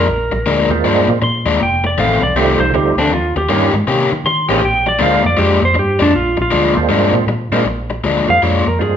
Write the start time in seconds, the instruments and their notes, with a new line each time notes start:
Already playing: electric slide guitar A#4
0.07 fingered electric bass A#1, muted overdriven electric guitar stroke
0.32 fingered electric bass A#1, muted overdriven electric guitar stroke
0.46 fingered electric bass D2, overdriven electric guitar A#2 F3 G#3 D4
0.69 fingered electric bass D#2, tonewheel organ G#3 A#3 C4 D4 F4, muted overdriven electric guitar stroke
0.84 fingered electric bass G2, overdriven electric guitar A#2 F3 G#3 D4
1.08 fingered electric bass A#2, muted overdriven electric guitar stroke
1.22 fingered electric bass A#2, electric slide guitar C6, muted overdriven electric guitar stroke
1.45 fingered electric bass D#2, overdriven electric guitar A#2 F3 G#3 D4
1.60 fingered electric bass F1, electric slide guitar G5, muted overdriven electric guitar stroke
1.84 electric slide guitar D5, muted overdriven electric guitar stroke
1.98 fingered electric bass A1, overdriven electric guitar F2 D#3 A3 C4, electric slide guitar F5
2.22 fingered electric bass C2, electric slide guitar D5, muted overdriven electric guitar stroke
2.34 fingered electric bass C2, overdriven electric guitar F2 D#3 A3 C4, tonewheel organ G3 A3 C4 D#4 F4, electric slide guitar G4
2.59 fingered electric bass C2, electric slide guitar C5, muted overdriven electric guitar stroke
2.72 fingered electric bass D2, tonewheel organ G3 A3 C4 D#4 F4, electric slide guitar G4, muted overdriven electric guitar stroke
2.97 fingered electric bass D2, overdriven electric guitar F2 D#3 A3 C4, electric slide guitar D4
3.11 fingered electric bass D#2, electric slide guitar F4, muted overdriven electric guitar stroke
3.36 fingered electric bass D#2, electric slide guitar G4, muted overdriven electric guitar stroke
3.49 fingered electric bass G2, overdriven electric guitar D#3 A#3 C#4 G4, tonewheel organ G3 A#3 C#4 D#4 F4
3.73 fingered electric bass G#2, muted overdriven electric guitar stroke
3.87 fingered electric bass C3, overdriven electric guitar D#3 A#3 C#4 G4
4.12 fingered electric bass D#3, muted overdriven electric guitar stroke
4.24 fingered electric bass D#3, electric slide guitar C6, muted overdriven electric guitar stroke
4.49 fingered electric bass A1, overdriven electric guitar D#3 A#3 C#4 G4, tonewheel organ G#3 A#3 C4 D4 G#4
4.62 fingered electric bass A#1, electric slide guitar G5, muted overdriven electric guitar stroke
4.86 electric slide guitar D5, muted overdriven electric guitar stroke
4.99 fingered electric bass D2, overdriven electric guitar A#2 F3 G#3 D4, tonewheel organ G#3 A#3 C4 D4 F4, electric slide guitar F5
5.24 fingered electric bass F2, electric slide guitar D5, muted overdriven electric guitar stroke
5.37 fingered electric bass F2, overdriven electric guitar A#2 F3 G#3 D4, electric slide guitar G4
5.62 fingered electric bass F2, electric slide guitar C5, muted overdriven electric guitar stroke
5.75 fingered electric bass G2, muted overdriven electric guitar stroke
5.79 electric slide guitar G4
5.99 fingered electric bass F2, overdriven electric guitar A#2 F3 G#3 D4, electric slide guitar D4
6.13 fingered electric bass A#1, electric slide guitar F4, muted overdriven electric guitar stroke
6.37 fingered electric bass A#1, muted overdriven electric guitar stroke
6.42 electric slide guitar F4
6.51 fingered electric bass D2, overdriven electric guitar A#2 F3 G#3 D4
6.75 fingered electric bass D#2, tonewheel organ G#3 A#3 C4 D4 F4, muted overdriven electric guitar stroke
6.89 fingered electric bass G2, overdriven electric guitar A#2 F3 G#3 D4
7.13 fingered electric bass A#2, muted overdriven electric guitar stroke
7.27 fingered electric bass A#2, muted overdriven electric guitar stroke
7.52 fingered electric bass A#2, overdriven electric guitar A#2 F3 G#3 D4, tonewheel organ G#3 A#3 C4 D4 F4
7.65 fingered electric bass A#1, muted overdriven electric guitar stroke
7.90 muted overdriven electric guitar stroke
8.04 fingered electric bass D2, overdriven electric guitar A#2 F3 G#3 D4
8.28 fingered electric bass F2, tonewheel organ G#3 A#3 C4 D4 F4, electric slide guitar F5, muted overdriven electric guitar stroke
8.42 fingered electric bass F2, overdriven electric guitar A#2 F3 G#3 D4, electric slide guitar C#5
8.66 fingered electric bass F2, electric slide guitar A#4, muted overdriven electric guitar stroke
8.79 fingered electric bass G2, tonewheel organ G#3 A#3 C4 D4 F4, electric slide guitar G#4, muted overdriven electric guitar stroke